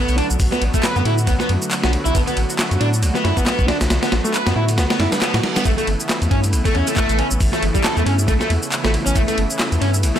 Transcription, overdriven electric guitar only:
0.00 0.17 B3 loud
0.18 0.26 D4 medium
0.52 0.61 B3 loud
0.74 0.83 A3 medium
0.83 0.95 B4 medium
0.96 1.02 B3 medium
1.05 1.13 E4 medium
1.27 1.32 B3 medium
1.40 1.49 B3 loud
1.84 1.90 B3 medium
2.05 2.14 E4 loud
2.15 2.20 B3 medium
2.27 2.36 B3 loud
2.81 2.89 D4 medium
3.15 3.24 B3 loud
3.24 3.36 E4 loud
3.37 3.45 B3 medium
3.46 3.67 B3 loud
3.68 3.76 D4 medium
4.02 4.11 B3 loud
4.24 4.33 A3 medium
4.34 4.45 B4 medium
4.46 4.52 B3 medium
4.56 4.64 E4 medium
4.78 4.82 B3 medium
4.90 4.99 B3 loud
5.00 5.08 E4 medium
5.12 5.21 B4 medium
5.22 5.33 B3 medium
5.34 5.38 F#4 medium
5.56 5.62 B3 medium
5.65 5.70 A3 medium
5.78 5.87 A3 loud
6.31 6.39 C#4 medium
6.65 6.74 A3 loud
6.75 6.87 C#4 loud
6.87 6.95 A3 medium
6.97 7.18 A3 loud
7.18 7.26 C#4 medium
7.53 7.62 A3 loud
7.75 7.84 G3 medium
7.84 7.96 A4 medium
7.97 8.03 A3 medium
8.06 8.14 C#4 medium
8.28 8.33 A3 medium
8.40 8.49 A3 loud
8.84 8.90 A3 medium
9.06 9.15 C#4 loud
9.15 9.20 A3 medium
9.28 9.37 A3 loud
9.81 9.89 C#4 medium
10.16 10.20 A3 loud

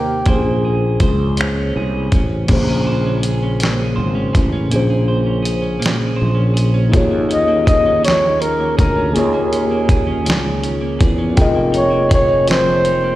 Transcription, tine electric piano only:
0.00 0.21 C3 medium
0.00 0.22 A#3 medium
0.00 0.23 D#4 medium
0.00 0.23 G4 medium
0.00 0.24 C5 medium
0.25 2.44 A#3 soft
0.25 2.45 C#4 medium
0.25 2.45 G#4 medium
0.30 2.46 C5 medium
2.46 4.66 C#3 medium
2.46 4.66 A#3 medium
2.46 4.67 C#4 medium
2.51 4.68 G#4 medium
2.51 4.69 C5 medium
4.68 6.88 A#2 medium
4.68 6.89 A#3 medium
4.68 6.90 C#4 medium
4.74 6.90 G#4 medium
4.74 6.91 C5 medium
6.89 9.10 A#3 medium
6.89 9.09 D#4 medium
6.89 9.11 F4 medium
6.94 9.12 G#4 medium
6.94 9.13 C#5 medium
9.12 11.32 D#3 medium
9.12 11.32 A#3 medium
9.12 11.33 F4 medium
9.17 11.34 G#4 medium
9.17 11.35 C#5 medium
11.34 13.15 F3 medium
11.34 13.15 F4 medium
11.34 13.15 G5 medium
11.38 13.15 G#4 medium
11.38 13.15 A#4 medium
11.38 13.15 D#5 medium

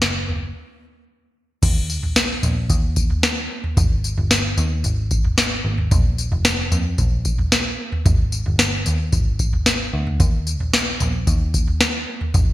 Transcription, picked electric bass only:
0.00 0.52 F#1 medium
1.63 2.03 D#2 loud
2.03 2.41 A#1 medium
2.43 2.69 A#1 medium
2.70 3.46 D#2 loud
3.77 4.15 G#1 loud
4.18 4.56 G1 medium
4.58 4.83 D#2 loud
4.85 5.61 G#1 medium
5.65 5.90 G#1 medium
5.92 6.30 A#1 loud
6.32 6.70 F1 medium
6.72 6.97 F2 loud
6.98 7.75 A#1 loud
8.06 8.44 G#1 loud
8.46 8.84 G1 medium
8.86 9.12 D#2 medium
9.13 9.89 G#1 medium
9.94 10.19 D2 medium
10.20 10.60 D#2 loud
10.60 10.98 A#1 medium
11.01 11.26 A#1 loud
11.27 12.04 D#2 loud
12.35 12.53 G#1 loud

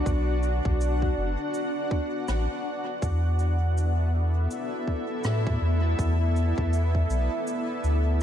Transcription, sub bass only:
0.06 0.61 B1 loud
0.65 1.14 B1 loud
1.17 1.37 F#1 medium
2.28 2.48 A1 medium
3.02 4.48 E2 medium
5.25 5.58 A2 medium
5.62 5.95 E2 medium
5.99 6.54 E2 loud
6.58 7.07 E2 loud
7.10 7.29 B1 medium
7.84 8.23 D2 loud

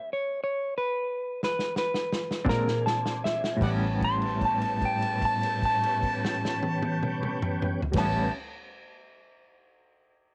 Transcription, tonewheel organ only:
2.46 3.60 C4 medium
2.46 3.60 D4 medium
2.46 3.60 G#4 soft
3.62 7.81 B3 soft
3.62 7.81 C#4 medium
3.62 7.81 G4 medium
7.96 8.31 B3 medium
7.96 8.31 C#4 medium
7.96 8.31 G4 medium

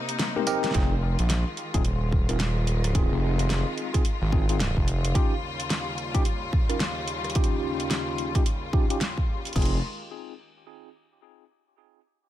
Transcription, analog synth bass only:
0.75 1.17 F1 medium
1.19 1.44 A#1 medium
1.74 2.27 D#1 medium
2.30 3.09 D#1 medium
3.12 3.64 F1 loud
4.22 4.74 G#1 loud
4.77 5.13 F1 medium
9.56 9.81 F1 loud

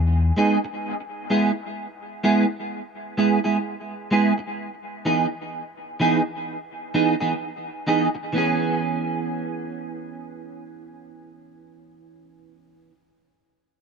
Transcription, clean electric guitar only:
0.37 0.56 G#3 medium
0.37 0.57 B3 medium
0.37 0.57 D#4 medium
0.37 0.57 G#4 medium
0.65 muted clean electric guitar stroke soft
1.30 1.50 G#3 medium
1.30 1.50 B3 medium
1.30 1.50 E4 medium
1.30 1.51 G#4 medium
2.24 2.44 G#3 medium
2.24 2.44 B3 medium
2.24 2.44 E4 medium
2.24 2.44 G#4 medium
3.17 3.38 G#3 medium
3.17 3.38 B3 medium
3.17 3.38 E4 medium
3.17 3.38 G#4 medium
3.44 3.57 G#3 medium
3.44 3.56 B3 soft
3.44 3.56 E4 medium
3.44 3.56 G#4 medium
4.11 4.31 G#3 medium
4.11 4.32 B3 medium
4.11 4.32 E4 medium
4.11 4.32 G#4 medium
4.38 muted clean electric guitar stroke soft
5.05 5.25 E3 medium
5.05 5.26 B3 medium
5.05 5.26 D#4 medium
5.05 5.26 G#4 medium
6.00 6.20 E3 medium
6.00 6.20 B3 loud
6.00 6.20 D#4 medium
6.00 6.20 G#4 medium
6.94 7.14 E3 medium
6.94 7.14 B3 medium
6.94 7.14 D#4 medium
6.94 7.14 G#4 medium
7.21 7.33 E3 medium
7.21 7.32 B3 medium
7.21 7.32 D#4 medium
7.21 7.32 G#4 medium
7.87 8.07 E3 medium
7.87 8.07 B3 medium
7.87 8.07 D#4 medium
7.87 8.08 G#4 medium
8.15 muted clean electric guitar stroke soft
8.33 12.90 E3 medium
8.33 12.92 B3 medium
8.33 12.93 C#4 medium
8.38 12.95 G#4 medium

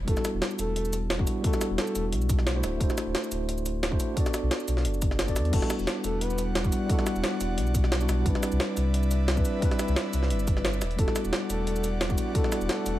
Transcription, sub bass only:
0.08 0.16 E1 loud
0.34 0.41 E1 loud
0.59 1.26 E1 medium
1.70 1.77 E1 loud
1.95 2.14 E1 medium
2.12 2.62 B1 medium
2.63 2.79 D1 loud
2.80 2.89 D1 loud
3.07 3.14 D1 medium
3.31 3.98 D1 medium
4.43 4.50 B1 loud
4.68 4.87 B1 medium
4.85 5.38 F#1 medium
5.36 5.52 E2 medium
5.53 5.61 E1 loud
5.79 5.86 E1 medium
6.04 6.71 E1 medium
7.16 7.23 E1 medium
7.41 7.59 E1 medium
7.57 8.07 B1 medium
8.09 8.24 B1 loud
8.26 8.34 C2 loud
8.52 8.59 C2 medium
8.77 9.44 C2 medium
9.88 9.95 C2 loud
10.13 10.32 C2 medium
10.30 10.80 G1 medium
10.82 10.97 E1 loud
10.99 11.07 E1 loud
11.25 11.32 E1 loud
11.50 12.17 E1 medium
12.61 12.68 E1 loud
12.86 12.99 E1 medium

